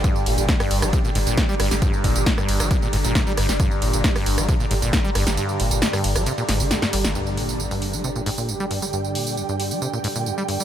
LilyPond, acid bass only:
\new Staff \with { instrumentName = "Acid bass" } { \clef bass \time 4/4 \key g \minor \tempo 4 = 135 g,8 bes,8 f,16 g,8 g16 c16 bes,16 aes,16 bes,16 g,16 g16 g,16 g16 | g,8 bes,8 f,16 g,8 g16 c16 bes,16 aes,16 bes,16 g,16 g16 g,16 g16 | g,8 bes,8 f,16 g,8 g16 c16 bes,16 aes,16 bes,16 g,16 g16 g,16 g16 | g,8 bes,8 f,16 g,8 g16 c16 bes,16 aes,16 d16 g,,16 g,16 g16 d16 |
g,8 bes,8 f,16 g,8 g16 c16 bes,16 aes,16 bes,16 g,16 g16 g,16 g16 | g,8 bes,8 f,16 g,8 g16 c16 bes,16 aes,16 bes,16 g,16 g16 g,16 g16 | }